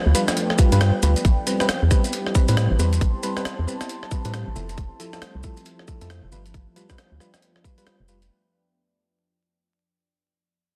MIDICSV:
0, 0, Header, 1, 6, 480
1, 0, Start_track
1, 0, Tempo, 441176
1, 1358, Time_signature, 4, 2, 24, 8
1, 11701, End_track
2, 0, Start_track
2, 0, Title_t, "Ambient pad"
2, 0, Program_c, 0, 92
2, 0, Note_on_c, 0, 53, 98
2, 0, Note_on_c, 0, 71, 83
2, 0, Note_on_c, 0, 74, 72
2, 0, Note_on_c, 0, 79, 96
2, 1358, Note_off_c, 0, 53, 0
2, 1359, Note_on_c, 0, 67, 81
2, 1360, Note_off_c, 0, 71, 0
2, 1643, Note_on_c, 0, 84, 91
2, 2188, Note_on_c, 0, 81, 79
2, 2754, Note_off_c, 0, 74, 0
2, 2800, Note_off_c, 0, 79, 0
2, 4957, Note_on_c, 0, 53, 92
2, 5509, Note_on_c, 0, 76, 79
2, 5737, Note_off_c, 0, 67, 0
2, 6880, Note_off_c, 0, 84, 0
2, 7038, Note_on_c, 0, 79, 90
2, 7100, Note_on_c, 0, 71, 77
2, 7223, Note_on_c, 0, 74, 85
2, 7511, Note_off_c, 0, 81, 0
2, 7765, Note_off_c, 0, 76, 0
2, 9037, Note_off_c, 0, 53, 0
2, 9039, Note_off_c, 0, 79, 0
2, 9040, Note_off_c, 0, 71, 0
2, 9040, Note_off_c, 0, 74, 0
2, 11701, End_track
3, 0, Start_track
3, 0, Title_t, "FM electric piano"
3, 0, Program_c, 1, 5
3, 158, Note_on_c, 1, 55, 78
3, 158, Note_on_c, 1, 65, 68
3, 159, Note_on_c, 1, 71, 87
3, 268, Note_off_c, 1, 55, 0
3, 268, Note_off_c, 1, 65, 0
3, 269, Note_off_c, 1, 71, 0
3, 640, Note_on_c, 1, 55, 74
3, 640, Note_on_c, 1, 65, 68
3, 640, Note_on_c, 1, 71, 82
3, 763, Note_off_c, 1, 55, 0
3, 763, Note_off_c, 1, 65, 0
3, 763, Note_off_c, 1, 71, 0
3, 786, Note_on_c, 1, 71, 95
3, 787, Note_on_c, 1, 55, 83
3, 787, Note_on_c, 1, 65, 77
3, 865, Note_off_c, 1, 55, 0
3, 865, Note_off_c, 1, 65, 0
3, 865, Note_off_c, 1, 71, 0
3, 881, Note_on_c, 1, 55, 74
3, 1045, Note_off_c, 1, 55, 0
3, 1120, Note_on_c, 1, 55, 75
3, 1120, Note_on_c, 1, 71, 91
3, 1121, Note_on_c, 1, 65, 71
3, 1229, Note_off_c, 1, 55, 0
3, 1229, Note_off_c, 1, 65, 0
3, 1229, Note_off_c, 1, 71, 0
3, 1598, Note_on_c, 1, 60, 69
3, 1598, Note_on_c, 1, 71, 78
3, 1599, Note_on_c, 1, 55, 75
3, 1722, Note_off_c, 1, 55, 0
3, 1722, Note_off_c, 1, 60, 0
3, 1722, Note_off_c, 1, 71, 0
3, 1745, Note_on_c, 1, 55, 85
3, 1745, Note_on_c, 1, 60, 82
3, 1746, Note_on_c, 1, 71, 94
3, 1815, Note_off_c, 1, 60, 0
3, 1816, Note_off_c, 1, 55, 0
3, 1816, Note_off_c, 1, 71, 0
3, 2079, Note_on_c, 1, 55, 77
3, 2079, Note_on_c, 1, 60, 73
3, 2080, Note_on_c, 1, 71, 87
3, 2189, Note_off_c, 1, 55, 0
3, 2189, Note_off_c, 1, 60, 0
3, 2189, Note_off_c, 1, 71, 0
3, 2559, Note_on_c, 1, 55, 73
3, 2559, Note_on_c, 1, 60, 69
3, 2559, Note_on_c, 1, 71, 81
3, 2682, Note_off_c, 1, 55, 0
3, 2682, Note_off_c, 1, 60, 0
3, 2682, Note_off_c, 1, 71, 0
3, 2705, Note_on_c, 1, 55, 80
3, 2705, Note_on_c, 1, 60, 79
3, 2705, Note_on_c, 1, 71, 92
3, 2784, Note_off_c, 1, 55, 0
3, 2784, Note_off_c, 1, 60, 0
3, 2784, Note_off_c, 1, 71, 0
3, 2798, Note_on_c, 1, 55, 71
3, 2963, Note_off_c, 1, 55, 0
3, 3037, Note_on_c, 1, 55, 77
3, 3037, Note_on_c, 1, 60, 74
3, 3038, Note_on_c, 1, 71, 90
3, 3148, Note_off_c, 1, 55, 0
3, 3148, Note_off_c, 1, 60, 0
3, 3148, Note_off_c, 1, 71, 0
3, 3517, Note_on_c, 1, 55, 74
3, 3517, Note_on_c, 1, 71, 88
3, 3518, Note_on_c, 1, 60, 73
3, 3641, Note_off_c, 1, 71, 0
3, 3642, Note_off_c, 1, 55, 0
3, 3642, Note_off_c, 1, 60, 0
3, 3663, Note_on_c, 1, 55, 81
3, 3663, Note_on_c, 1, 60, 80
3, 3663, Note_on_c, 1, 71, 94
3, 3734, Note_off_c, 1, 55, 0
3, 3734, Note_off_c, 1, 60, 0
3, 3734, Note_off_c, 1, 71, 0
3, 3996, Note_on_c, 1, 71, 81
3, 3997, Note_on_c, 1, 55, 76
3, 3997, Note_on_c, 1, 60, 73
3, 4107, Note_off_c, 1, 55, 0
3, 4107, Note_off_c, 1, 71, 0
3, 4108, Note_off_c, 1, 60, 0
3, 4475, Note_on_c, 1, 60, 66
3, 4475, Note_on_c, 1, 71, 79
3, 4476, Note_on_c, 1, 55, 74
3, 4601, Note_off_c, 1, 55, 0
3, 4601, Note_off_c, 1, 60, 0
3, 4601, Note_off_c, 1, 71, 0
3, 4622, Note_on_c, 1, 55, 79
3, 4622, Note_on_c, 1, 60, 77
3, 4623, Note_on_c, 1, 71, 89
3, 4703, Note_off_c, 1, 55, 0
3, 4703, Note_off_c, 1, 60, 0
3, 4703, Note_off_c, 1, 71, 0
3, 4716, Note_on_c, 1, 55, 72
3, 4716, Note_on_c, 1, 60, 67
3, 4716, Note_on_c, 1, 71, 79
3, 4883, Note_off_c, 1, 55, 0
3, 4883, Note_off_c, 1, 60, 0
3, 4883, Note_off_c, 1, 71, 0
3, 4954, Note_on_c, 1, 53, 76
3, 4954, Note_on_c, 1, 64, 73
3, 4955, Note_on_c, 1, 69, 88
3, 5066, Note_off_c, 1, 53, 0
3, 5066, Note_off_c, 1, 64, 0
3, 5066, Note_off_c, 1, 69, 0
3, 5435, Note_on_c, 1, 53, 77
3, 5435, Note_on_c, 1, 64, 70
3, 5436, Note_on_c, 1, 69, 82
3, 5561, Note_off_c, 1, 53, 0
3, 5561, Note_off_c, 1, 64, 0
3, 5561, Note_off_c, 1, 69, 0
3, 5582, Note_on_c, 1, 53, 86
3, 5582, Note_on_c, 1, 64, 75
3, 5582, Note_on_c, 1, 69, 93
3, 5654, Note_off_c, 1, 53, 0
3, 5654, Note_off_c, 1, 64, 0
3, 5654, Note_off_c, 1, 69, 0
3, 5916, Note_on_c, 1, 53, 75
3, 5916, Note_on_c, 1, 69, 79
3, 5917, Note_on_c, 1, 64, 68
3, 6027, Note_off_c, 1, 53, 0
3, 6027, Note_off_c, 1, 69, 0
3, 6028, Note_off_c, 1, 64, 0
3, 6396, Note_on_c, 1, 53, 74
3, 6396, Note_on_c, 1, 64, 66
3, 6396, Note_on_c, 1, 69, 82
3, 6521, Note_off_c, 1, 53, 0
3, 6521, Note_off_c, 1, 64, 0
3, 6521, Note_off_c, 1, 69, 0
3, 6542, Note_on_c, 1, 53, 86
3, 6543, Note_on_c, 1, 64, 74
3, 6543, Note_on_c, 1, 69, 95
3, 6623, Note_off_c, 1, 53, 0
3, 6623, Note_off_c, 1, 64, 0
3, 6623, Note_off_c, 1, 69, 0
3, 6636, Note_on_c, 1, 53, 73
3, 6636, Note_on_c, 1, 64, 65
3, 6802, Note_off_c, 1, 53, 0
3, 6803, Note_off_c, 1, 64, 0
3, 6876, Note_on_c, 1, 55, 78
3, 6876, Note_on_c, 1, 65, 74
3, 6876, Note_on_c, 1, 71, 85
3, 6987, Note_off_c, 1, 55, 0
3, 6987, Note_off_c, 1, 65, 0
3, 6987, Note_off_c, 1, 71, 0
3, 7356, Note_on_c, 1, 55, 78
3, 7356, Note_on_c, 1, 65, 69
3, 7356, Note_on_c, 1, 71, 80
3, 7481, Note_off_c, 1, 55, 0
3, 7481, Note_off_c, 1, 65, 0
3, 7481, Note_off_c, 1, 71, 0
3, 7502, Note_on_c, 1, 55, 80
3, 7502, Note_on_c, 1, 65, 78
3, 7502, Note_on_c, 1, 71, 94
3, 7574, Note_off_c, 1, 55, 0
3, 7574, Note_off_c, 1, 65, 0
3, 7574, Note_off_c, 1, 71, 0
3, 7837, Note_on_c, 1, 55, 73
3, 7837, Note_on_c, 1, 65, 68
3, 7837, Note_on_c, 1, 71, 79
3, 7948, Note_off_c, 1, 55, 0
3, 7948, Note_off_c, 1, 65, 0
3, 7948, Note_off_c, 1, 71, 0
3, 8317, Note_on_c, 1, 55, 70
3, 8317, Note_on_c, 1, 65, 66
3, 8318, Note_on_c, 1, 71, 80
3, 8441, Note_off_c, 1, 65, 0
3, 8442, Note_off_c, 1, 55, 0
3, 8442, Note_off_c, 1, 71, 0
3, 8463, Note_on_c, 1, 55, 82
3, 8463, Note_on_c, 1, 65, 72
3, 8463, Note_on_c, 1, 71, 86
3, 8543, Note_off_c, 1, 55, 0
3, 8543, Note_off_c, 1, 65, 0
3, 8543, Note_off_c, 1, 71, 0
3, 8558, Note_on_c, 1, 55, 67
3, 8558, Note_on_c, 1, 65, 62
3, 8724, Note_off_c, 1, 55, 0
3, 8724, Note_off_c, 1, 65, 0
3, 8797, Note_on_c, 1, 55, 73
3, 8797, Note_on_c, 1, 65, 68
3, 8797, Note_on_c, 1, 71, 82
3, 8908, Note_off_c, 1, 55, 0
3, 8908, Note_off_c, 1, 65, 0
3, 8908, Note_off_c, 1, 71, 0
3, 11701, End_track
4, 0, Start_track
4, 0, Title_t, "String machine"
4, 0, Program_c, 2, 50
4, 0, Note_on_c, 2, 57, 82
4, 0, Note_on_c, 2, 59, 74
4, 0, Note_on_c, 2, 62, 78
4, 0, Note_on_c, 2, 65, 89
4, 1336, Note_off_c, 2, 57, 0
4, 1336, Note_off_c, 2, 62, 0
4, 1336, Note_off_c, 2, 65, 0
4, 1359, Note_on_c, 2, 60, 74
4, 1360, Note_on_c, 2, 55, 86
4, 1360, Note_on_c, 2, 64, 90
4, 4915, Note_off_c, 2, 59, 0
4, 4960, Note_on_c, 2, 57, 71
4, 6835, Note_off_c, 2, 55, 0
4, 6835, Note_off_c, 2, 60, 0
4, 6835, Note_off_c, 2, 64, 0
4, 6876, Note_on_c, 2, 59, 74
4, 6877, Note_on_c, 2, 65, 89
4, 6878, Note_on_c, 2, 62, 71
4, 8998, Note_off_c, 2, 57, 0
4, 9016, Note_off_c, 2, 59, 0
4, 9016, Note_off_c, 2, 62, 0
4, 9016, Note_off_c, 2, 65, 0
4, 11701, End_track
5, 0, Start_track
5, 0, Title_t, "FM bass"
5, 0, Program_c, 3, 39
5, 66, Note_on_c, 3, 38, 89
5, 149, Note_off_c, 3, 38, 0
5, 785, Note_on_c, 3, 43, 95
5, 995, Note_off_c, 3, 43, 0
5, 1118, Note_on_c, 3, 38, 97
5, 1249, Note_off_c, 3, 38, 0
5, 1358, Note_on_c, 3, 33, 100
5, 1489, Note_off_c, 3, 33, 0
5, 1985, Note_on_c, 3, 40, 86
5, 2069, Note_off_c, 3, 40, 0
5, 2705, Note_on_c, 3, 45, 92
5, 2915, Note_off_c, 3, 45, 0
5, 2945, Note_on_c, 3, 33, 79
5, 3029, Note_off_c, 3, 33, 0
5, 3039, Note_on_c, 3, 40, 103
5, 3259, Note_off_c, 3, 40, 0
5, 3277, Note_on_c, 3, 33, 98
5, 3408, Note_off_c, 3, 33, 0
5, 3905, Note_on_c, 3, 40, 87
5, 3989, Note_off_c, 3, 40, 0
5, 4625, Note_on_c, 3, 45, 90
5, 4835, Note_off_c, 3, 45, 0
5, 4865, Note_on_c, 3, 33, 79
5, 4949, Note_off_c, 3, 33, 0
5, 4958, Note_on_c, 3, 29, 101
5, 5179, Note_off_c, 3, 29, 0
5, 5197, Note_on_c, 3, 29, 99
5, 5328, Note_off_c, 3, 29, 0
5, 5821, Note_on_c, 3, 36, 88
5, 5907, Note_off_c, 3, 36, 0
5, 6542, Note_on_c, 3, 41, 98
5, 6754, Note_off_c, 3, 41, 0
5, 6782, Note_on_c, 3, 29, 82
5, 6867, Note_off_c, 3, 29, 0
5, 6876, Note_on_c, 3, 31, 100
5, 7098, Note_off_c, 3, 31, 0
5, 7118, Note_on_c, 3, 31, 100
5, 7249, Note_off_c, 3, 31, 0
5, 7743, Note_on_c, 3, 38, 84
5, 7828, Note_off_c, 3, 38, 0
5, 8704, Note_on_c, 3, 29, 89
5, 9022, Note_off_c, 3, 29, 0
5, 11701, End_track
6, 0, Start_track
6, 0, Title_t, "Drums"
6, 161, Note_on_c, 9, 42, 101
6, 164, Note_on_c, 9, 70, 78
6, 269, Note_off_c, 9, 42, 0
6, 273, Note_off_c, 9, 70, 0
6, 306, Note_on_c, 9, 70, 54
6, 307, Note_on_c, 9, 37, 62
6, 307, Note_on_c, 9, 42, 33
6, 400, Note_off_c, 9, 42, 0
6, 400, Note_on_c, 9, 42, 66
6, 401, Note_off_c, 9, 70, 0
6, 401, Note_on_c, 9, 70, 36
6, 416, Note_off_c, 9, 37, 0
6, 509, Note_off_c, 9, 42, 0
6, 510, Note_off_c, 9, 70, 0
6, 546, Note_on_c, 9, 37, 31
6, 632, Note_on_c, 9, 70, 95
6, 637, Note_on_c, 9, 36, 105
6, 639, Note_on_c, 9, 42, 90
6, 655, Note_off_c, 9, 37, 0
6, 741, Note_off_c, 9, 70, 0
6, 746, Note_off_c, 9, 36, 0
6, 748, Note_off_c, 9, 42, 0
6, 785, Note_on_c, 9, 42, 60
6, 786, Note_on_c, 9, 70, 48
6, 877, Note_off_c, 9, 70, 0
6, 877, Note_on_c, 9, 70, 39
6, 879, Note_off_c, 9, 42, 0
6, 879, Note_on_c, 9, 37, 108
6, 879, Note_on_c, 9, 42, 57
6, 986, Note_off_c, 9, 70, 0
6, 988, Note_off_c, 9, 37, 0
6, 988, Note_off_c, 9, 42, 0
6, 1115, Note_on_c, 9, 70, 89
6, 1118, Note_on_c, 9, 42, 93
6, 1224, Note_off_c, 9, 70, 0
6, 1227, Note_off_c, 9, 42, 0
6, 1264, Note_on_c, 9, 42, 35
6, 1270, Note_on_c, 9, 70, 51
6, 1357, Note_off_c, 9, 42, 0
6, 1357, Note_on_c, 9, 36, 117
6, 1357, Note_on_c, 9, 42, 58
6, 1367, Note_off_c, 9, 70, 0
6, 1367, Note_on_c, 9, 70, 37
6, 1466, Note_off_c, 9, 36, 0
6, 1466, Note_off_c, 9, 42, 0
6, 1476, Note_off_c, 9, 70, 0
6, 1597, Note_on_c, 9, 42, 64
6, 1600, Note_on_c, 9, 70, 91
6, 1705, Note_off_c, 9, 42, 0
6, 1709, Note_off_c, 9, 70, 0
6, 1743, Note_on_c, 9, 37, 52
6, 1748, Note_on_c, 9, 70, 46
6, 1836, Note_off_c, 9, 37, 0
6, 1836, Note_off_c, 9, 70, 0
6, 1836, Note_on_c, 9, 37, 115
6, 1836, Note_on_c, 9, 42, 64
6, 1836, Note_on_c, 9, 70, 38
6, 1945, Note_off_c, 9, 37, 0
6, 1945, Note_off_c, 9, 42, 0
6, 1945, Note_off_c, 9, 70, 0
6, 2076, Note_on_c, 9, 37, 28
6, 2077, Note_on_c, 9, 36, 100
6, 2078, Note_on_c, 9, 70, 85
6, 2185, Note_off_c, 9, 37, 0
6, 2186, Note_off_c, 9, 36, 0
6, 2187, Note_off_c, 9, 70, 0
6, 2223, Note_on_c, 9, 42, 36
6, 2229, Note_on_c, 9, 70, 54
6, 2313, Note_off_c, 9, 70, 0
6, 2313, Note_on_c, 9, 70, 35
6, 2318, Note_off_c, 9, 42, 0
6, 2318, Note_on_c, 9, 42, 68
6, 2422, Note_off_c, 9, 70, 0
6, 2427, Note_off_c, 9, 42, 0
6, 2465, Note_on_c, 9, 37, 29
6, 2556, Note_on_c, 9, 70, 98
6, 2558, Note_on_c, 9, 36, 96
6, 2573, Note_off_c, 9, 37, 0
6, 2664, Note_off_c, 9, 70, 0
6, 2666, Note_off_c, 9, 36, 0
6, 2700, Note_on_c, 9, 70, 54
6, 2704, Note_on_c, 9, 42, 64
6, 2798, Note_off_c, 9, 42, 0
6, 2798, Note_on_c, 9, 37, 109
6, 2798, Note_on_c, 9, 42, 60
6, 2801, Note_off_c, 9, 70, 0
6, 2801, Note_on_c, 9, 70, 35
6, 2906, Note_off_c, 9, 37, 0
6, 2906, Note_off_c, 9, 42, 0
6, 2909, Note_off_c, 9, 70, 0
6, 3038, Note_on_c, 9, 70, 86
6, 3147, Note_off_c, 9, 70, 0
6, 3183, Note_on_c, 9, 42, 36
6, 3194, Note_on_c, 9, 70, 51
6, 3277, Note_off_c, 9, 42, 0
6, 3277, Note_on_c, 9, 36, 107
6, 3277, Note_on_c, 9, 42, 60
6, 3283, Note_off_c, 9, 70, 0
6, 3283, Note_on_c, 9, 70, 34
6, 3386, Note_off_c, 9, 36, 0
6, 3386, Note_off_c, 9, 42, 0
6, 3392, Note_off_c, 9, 70, 0
6, 3514, Note_on_c, 9, 70, 85
6, 3518, Note_on_c, 9, 42, 69
6, 3623, Note_off_c, 9, 70, 0
6, 3627, Note_off_c, 9, 42, 0
6, 3663, Note_on_c, 9, 37, 51
6, 3664, Note_on_c, 9, 70, 41
6, 3757, Note_off_c, 9, 37, 0
6, 3757, Note_on_c, 9, 37, 108
6, 3757, Note_on_c, 9, 42, 64
6, 3761, Note_off_c, 9, 70, 0
6, 3761, Note_on_c, 9, 70, 37
6, 3866, Note_off_c, 9, 37, 0
6, 3866, Note_off_c, 9, 42, 0
6, 3870, Note_off_c, 9, 70, 0
6, 4005, Note_on_c, 9, 70, 74
6, 4114, Note_off_c, 9, 70, 0
6, 4143, Note_on_c, 9, 37, 56
6, 4143, Note_on_c, 9, 42, 35
6, 4146, Note_on_c, 9, 70, 47
6, 4237, Note_off_c, 9, 42, 0
6, 4237, Note_on_c, 9, 42, 67
6, 4244, Note_off_c, 9, 70, 0
6, 4244, Note_on_c, 9, 70, 34
6, 4252, Note_off_c, 9, 37, 0
6, 4346, Note_off_c, 9, 42, 0
6, 4353, Note_off_c, 9, 70, 0
6, 4384, Note_on_c, 9, 37, 28
6, 4474, Note_on_c, 9, 70, 78
6, 4477, Note_on_c, 9, 36, 93
6, 4493, Note_off_c, 9, 37, 0
6, 4583, Note_off_c, 9, 70, 0
6, 4585, Note_off_c, 9, 36, 0
6, 4622, Note_on_c, 9, 70, 42
6, 4624, Note_on_c, 9, 42, 67
6, 4718, Note_off_c, 9, 42, 0
6, 4718, Note_on_c, 9, 37, 104
6, 4718, Note_on_c, 9, 42, 64
6, 4721, Note_off_c, 9, 70, 0
6, 4721, Note_on_c, 9, 70, 39
6, 4827, Note_off_c, 9, 37, 0
6, 4827, Note_off_c, 9, 42, 0
6, 4829, Note_off_c, 9, 70, 0
6, 4959, Note_on_c, 9, 70, 83
6, 5068, Note_off_c, 9, 70, 0
6, 5104, Note_on_c, 9, 42, 39
6, 5108, Note_on_c, 9, 70, 46
6, 5195, Note_off_c, 9, 70, 0
6, 5195, Note_on_c, 9, 70, 32
6, 5197, Note_off_c, 9, 42, 0
6, 5197, Note_on_c, 9, 36, 112
6, 5197, Note_on_c, 9, 42, 61
6, 5303, Note_off_c, 9, 70, 0
6, 5306, Note_off_c, 9, 36, 0
6, 5306, Note_off_c, 9, 42, 0
6, 5438, Note_on_c, 9, 42, 66
6, 5446, Note_on_c, 9, 70, 85
6, 5546, Note_off_c, 9, 42, 0
6, 5555, Note_off_c, 9, 70, 0
6, 5583, Note_on_c, 9, 70, 46
6, 5584, Note_on_c, 9, 37, 53
6, 5677, Note_off_c, 9, 37, 0
6, 5677, Note_on_c, 9, 37, 112
6, 5677, Note_on_c, 9, 42, 65
6, 5681, Note_off_c, 9, 70, 0
6, 5681, Note_on_c, 9, 70, 30
6, 5786, Note_off_c, 9, 37, 0
6, 5786, Note_off_c, 9, 42, 0
6, 5790, Note_off_c, 9, 70, 0
6, 5911, Note_on_c, 9, 70, 78
6, 5917, Note_on_c, 9, 36, 91
6, 6020, Note_off_c, 9, 70, 0
6, 6026, Note_off_c, 9, 36, 0
6, 6057, Note_on_c, 9, 70, 47
6, 6064, Note_on_c, 9, 42, 38
6, 6152, Note_off_c, 9, 70, 0
6, 6152, Note_on_c, 9, 70, 34
6, 6157, Note_off_c, 9, 42, 0
6, 6157, Note_on_c, 9, 42, 70
6, 6260, Note_off_c, 9, 70, 0
6, 6266, Note_off_c, 9, 42, 0
6, 6304, Note_on_c, 9, 37, 30
6, 6394, Note_on_c, 9, 70, 73
6, 6397, Note_on_c, 9, 36, 96
6, 6413, Note_off_c, 9, 37, 0
6, 6503, Note_off_c, 9, 70, 0
6, 6506, Note_off_c, 9, 36, 0
6, 6543, Note_on_c, 9, 42, 65
6, 6543, Note_on_c, 9, 70, 46
6, 6637, Note_off_c, 9, 42, 0
6, 6637, Note_on_c, 9, 37, 109
6, 6637, Note_on_c, 9, 42, 61
6, 6643, Note_off_c, 9, 70, 0
6, 6643, Note_on_c, 9, 70, 38
6, 6746, Note_off_c, 9, 37, 0
6, 6746, Note_off_c, 9, 42, 0
6, 6751, Note_off_c, 9, 70, 0
6, 6877, Note_on_c, 9, 70, 80
6, 6986, Note_off_c, 9, 70, 0
6, 7024, Note_on_c, 9, 42, 37
6, 7031, Note_on_c, 9, 70, 43
6, 7117, Note_on_c, 9, 36, 109
6, 7118, Note_off_c, 9, 42, 0
6, 7118, Note_on_c, 9, 42, 57
6, 7121, Note_off_c, 9, 70, 0
6, 7121, Note_on_c, 9, 70, 31
6, 7226, Note_off_c, 9, 36, 0
6, 7227, Note_off_c, 9, 42, 0
6, 7229, Note_off_c, 9, 70, 0
6, 7357, Note_on_c, 9, 42, 62
6, 7366, Note_on_c, 9, 70, 76
6, 7466, Note_off_c, 9, 42, 0
6, 7475, Note_off_c, 9, 70, 0
6, 7501, Note_on_c, 9, 70, 47
6, 7503, Note_on_c, 9, 37, 55
6, 7504, Note_on_c, 9, 36, 53
6, 7594, Note_off_c, 9, 70, 0
6, 7594, Note_on_c, 9, 70, 36
6, 7598, Note_off_c, 9, 37, 0
6, 7598, Note_on_c, 9, 37, 109
6, 7598, Note_on_c, 9, 42, 65
6, 7612, Note_off_c, 9, 36, 0
6, 7703, Note_off_c, 9, 70, 0
6, 7707, Note_off_c, 9, 37, 0
6, 7707, Note_off_c, 9, 42, 0
6, 7838, Note_on_c, 9, 37, 28
6, 7844, Note_on_c, 9, 70, 76
6, 7946, Note_off_c, 9, 37, 0
6, 7953, Note_off_c, 9, 70, 0
6, 7984, Note_on_c, 9, 37, 55
6, 7984, Note_on_c, 9, 42, 36
6, 7987, Note_on_c, 9, 70, 52
6, 8078, Note_off_c, 9, 42, 0
6, 8078, Note_on_c, 9, 42, 66
6, 8080, Note_off_c, 9, 70, 0
6, 8080, Note_on_c, 9, 70, 30
6, 8092, Note_off_c, 9, 37, 0
6, 8186, Note_off_c, 9, 42, 0
6, 8189, Note_off_c, 9, 70, 0
6, 8224, Note_on_c, 9, 37, 31
6, 8317, Note_on_c, 9, 36, 90
6, 8324, Note_on_c, 9, 70, 83
6, 8333, Note_off_c, 9, 37, 0
6, 8426, Note_off_c, 9, 36, 0
6, 8433, Note_off_c, 9, 70, 0
6, 8463, Note_on_c, 9, 42, 62
6, 8472, Note_on_c, 9, 70, 48
6, 8557, Note_off_c, 9, 70, 0
6, 8557, Note_on_c, 9, 70, 33
6, 8558, Note_off_c, 9, 42, 0
6, 8558, Note_on_c, 9, 37, 106
6, 8558, Note_on_c, 9, 42, 62
6, 8666, Note_off_c, 9, 70, 0
6, 8667, Note_off_c, 9, 37, 0
6, 8667, Note_off_c, 9, 42, 0
6, 8795, Note_on_c, 9, 70, 84
6, 8903, Note_off_c, 9, 70, 0
6, 8944, Note_on_c, 9, 42, 37
6, 8945, Note_on_c, 9, 70, 42
6, 9053, Note_off_c, 9, 42, 0
6, 9054, Note_off_c, 9, 70, 0
6, 11701, End_track
0, 0, End_of_file